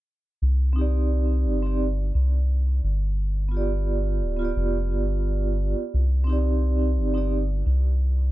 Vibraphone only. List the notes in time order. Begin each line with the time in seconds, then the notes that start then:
0.73 C4 D#4
0.79 G4 D5
1.62 C4 D#4 G4
1.67 D5
3.49 B3 F4
3.54 G4 D5
4.37 B3 F4
4.42 G4 D5
6.24 C4 D#4
6.30 G4 D5
7.14 C4 D#4 G4
7.18 D5